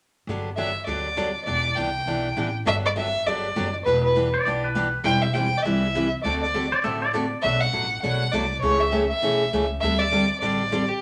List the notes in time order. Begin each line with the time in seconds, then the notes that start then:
0.27 G1 D3 F#3 B3 D4 G4
0.57 D3 F#3 B3 D4 G4 E5
0.86 D2 D3 F#3 B3 D4 G4 D5
1.17 D3 F#3 B3 D4 G4
1.45 E1 E3 B3 D4 G4 D5
1.75 C2 E3 B3 D4 G4 G5
2.06 B1 E3 B3 D4 G4
2.37 A1 E3 B3 D4 G4
2.65 G1 D3 F#3 B3 D4 G4 E5
2.86 D5
2.96 D3 F#3 B3 D4 G4 E5
3.26 G1 D3 F#3 B3 D4 G4 D5
3.56 F#1 D3 F#3 B3 D4 G4
3.85 E1 E3 B3 D4 G4 B4
4.03 B4
4.16 E3 B3 D4 G4
4.34 D5
4.45 B1 E3 B3 D4 G4 D5
4.64 B4
4.75 E3 B3 D4 G4
5.03 E1 E3 G3 C4 E4 B4 G5
5.22 E5
5.34 E3 G3 C4 E4 B4 G5
5.58 D5
5.63 C2 E3 G3 C4 E4 B4 E5
5.95 E3 G3 C4 E4 B4
6.23 D2 D3 A3 C4 F#4 A4 D5
6.42 D5
6.54 D3 A3 C4 F#4 A4
6.72 D5
6.83 A1 D3 A3 C4 F#4 A4 E5
7.02 D5
7.13 D3 A3 C4 F#4 A4 D5
7.42 B1 B2 F#3 A3 D4 F#4 E5
7.61 F#5
7.73 A1 B2 F#3 A3 D4 F#4
8.02 B1 B2 F#3 A3 D4 F#4 F#5
8.32 C2 B2 F#3 A3 D4 F#4 D5
8.61 C#2 C#3 E3 A3 C#4 G4 C#5
8.80 E5
8.92 C#3 E3 A3 C#4 G4
9.10 E5
9.22 B1 C#3 E3 A3 C#4 G4
9.53 C#2 C#3 E3 A3 C#4 G4
9.81 D2 D3 G3 C4 D4 G4 E5
9.99 D5
10.12 D3 G3 C4 D4 G4
10.40 A1 D3 G3 C4 D4 G4 D5
10.72 D3 G3 C4 D4 G4
10.88 G4